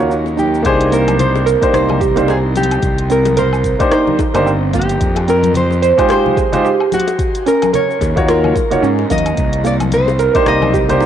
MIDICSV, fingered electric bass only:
0, 0, Header, 1, 2, 480
1, 0, Start_track
1, 0, Key_signature, -3, "minor"
1, 0, Tempo, 545455
1, 567, Time_signature, 4, 2, 24, 8
1, 9731, End_track
2, 0, Start_track
2, 0, Title_t, "Fingered electric bass"
2, 0, Program_c, 0, 33
2, 0, Note_on_c, 0, 39, 79
2, 547, Note_off_c, 0, 39, 0
2, 567, Note_on_c, 0, 36, 94
2, 1363, Note_off_c, 0, 36, 0
2, 1527, Note_on_c, 0, 36, 80
2, 2441, Note_off_c, 0, 36, 0
2, 2488, Note_on_c, 0, 36, 92
2, 3284, Note_off_c, 0, 36, 0
2, 3825, Note_on_c, 0, 31, 82
2, 4361, Note_off_c, 0, 31, 0
2, 4404, Note_on_c, 0, 41, 95
2, 5202, Note_off_c, 0, 41, 0
2, 7049, Note_on_c, 0, 39, 95
2, 7482, Note_off_c, 0, 39, 0
2, 7766, Note_on_c, 0, 44, 76
2, 7949, Note_off_c, 0, 44, 0
2, 8009, Note_on_c, 0, 39, 97
2, 8191, Note_off_c, 0, 39, 0
2, 8249, Note_on_c, 0, 36, 93
2, 9044, Note_off_c, 0, 36, 0
2, 9205, Note_on_c, 0, 36, 78
2, 9731, Note_off_c, 0, 36, 0
2, 9731, End_track
0, 0, End_of_file